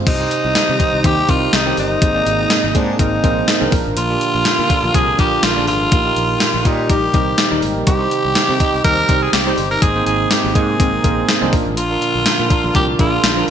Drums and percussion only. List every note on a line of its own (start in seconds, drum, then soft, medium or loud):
0.07 kick loud
0.07 closed hi-hat loud
0.07 crash loud
0.31 closed hi-hat medium
0.55 snare loud
0.55 closed hi-hat medium
0.55 tambourine medium
0.80 kick medium
0.80 closed hi-hat medium
1.04 kick medium
1.04 closed hi-hat medium
1.29 kick medium
1.29 closed hi-hat medium
1.53 snare loud
1.53 closed hi-hat medium
1.53 tambourine medium
1.77 open hi-hat medium
2.02 kick loud
2.02 closed hi-hat loud
2.26 closed hi-hat medium
2.50 snare loud
2.50 closed hi-hat medium
2.50 tambourine medium
2.75 kick medium
2.75 closed hi-hat medium
2.99 kick medium
2.99 closed hi-hat medium
3.24 kick medium
3.24 closed hi-hat medium
3.48 snare loud
3.48 closed hi-hat medium
3.48 tambourine medium
3.72 kick loud
3.72 open hi-hat medium
3.97 closed hi-hat loud
4.21 closed hi-hat medium
4.45 snare loud
4.45 closed hi-hat medium
4.45 tambourine medium
4.70 kick medium
4.70 closed hi-hat medium
4.94 kick medium
4.94 closed hi-hat medium
5.19 kick medium
5.19 closed hi-hat medium
5.43 snare loud
5.43 closed hi-hat medium
5.43 tambourine medium
5.67 open hi-hat medium
5.92 kick loud
5.92 closed hi-hat loud
6.16 closed hi-hat medium
6.40 snare loud
6.40 closed hi-hat medium
6.40 tambourine medium
6.65 kick loud
6.65 closed hi-hat medium
6.89 kick medium
6.89 closed hi-hat medium
7.14 kick medium
7.14 closed hi-hat medium
7.38 snare loud
7.38 closed hi-hat medium
7.38 tambourine medium
7.62 open hi-hat medium
7.87 kick loud
7.87 closed hi-hat loud
8.11 closed hi-hat medium
8.35 snare loud
8.35 closed hi-hat medium
8.35 tambourine medium
8.60 kick medium
8.60 closed hi-hat medium
8.84 kick medium
8.84 closed hi-hat medium
9.09 kick medium
9.09 closed hi-hat medium
9.33 snare loud
9.33 closed hi-hat medium
9.33 tambourine medium
9.58 open hi-hat medium
9.82 kick loud
9.82 closed hi-hat loud
10.06 closed hi-hat medium
10.31 snare loud
10.31 closed hi-hat medium
10.31 tambourine medium
10.55 kick loud
10.55 closed hi-hat medium
10.80 kick loud
10.80 closed hi-hat medium
11.04 kick medium
11.04 closed hi-hat medium
11.28 snare loud
11.28 closed hi-hat medium
11.28 tambourine medium
11.53 kick loud
11.53 open hi-hat medium
11.77 closed hi-hat loud
12.02 closed hi-hat medium
12.26 snare loud
12.26 closed hi-hat medium
12.26 tambourine medium
12.50 kick loud
12.50 closed hi-hat medium
12.75 kick medium
12.75 closed hi-hat medium
12.99 kick medium
12.99 closed hi-hat medium
13.24 snare loud
13.24 closed hi-hat medium
13.24 tambourine medium